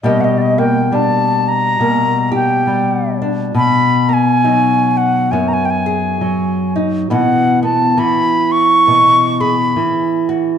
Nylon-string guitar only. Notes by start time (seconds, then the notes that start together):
0.03 B2 G3 A#3 G4
0.58 A#3
0.92 G3 D4
1.79 B2 A#3
2.32 G4
2.67 G3
3.22 D4
3.54 B2
4.09 B3
4.44 F#3 D#4
5.32 F#2 B3
5.86 G#4
6.21 F#3
6.76 D#4
7.10 B2 E3 B3 F#4
7.63 B3
7.97 E3 F#4
8.87 B2 B3
9.40 G#4
9.76 E3
10.29 F#4